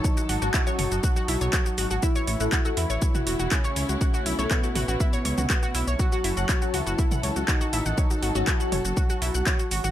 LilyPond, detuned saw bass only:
\new Staff \with { instrumentName = "Detuned saw bass" } { \clef bass \time 4/4 \key fis \dorian \tempo 4 = 121 r8 gis,,16 gis,,16 r8 fis,,16 fis,,16 r8 b,,16 b,,16 r8 gis,,16 gis,,16 | r8 a,,16 a,,16 r8 e,16 a,,16 r8 e,,16 e,,16 r8 cis,16 cis,16 | r8 b,,16 b,,16 r8 a,,16 a,,16 r8 cis,16 cis,16 r8 b,,16 b,,16 | r8 fis,,16 fis,,16 r8 cis,16 fis,,16 r8 cis,16 cis,16 r8 a,,16 a,,16 |
r8 gis,,16 gis,,16 r8 fis,,16 fis,,16 r8 b,,16 b,,16 r8 gis,,16 gis,,16 | }